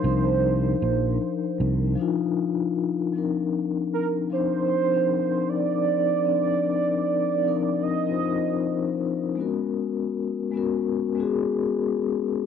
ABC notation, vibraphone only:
X:1
M:4/4
L:1/16
Q:"Swing 16ths" 1/4=77
K:Cm
V:1 name="Vibraphone"
[F,DEB]6 z4 [F,DEF]4 z2 | [F,CDEB]4 z2 [F,CDEc]2 z [F,CDEB]4- [F,CDEB] z2 | [F,CDEB]4 z2 [F,CDEB]2 z [F,CEFc]4- [F,CEFc] z2 | [A,_C_D_GB]4 z2 [A,CDGB]2 z [A,CDGA]4- [A,CDGA] z2 |]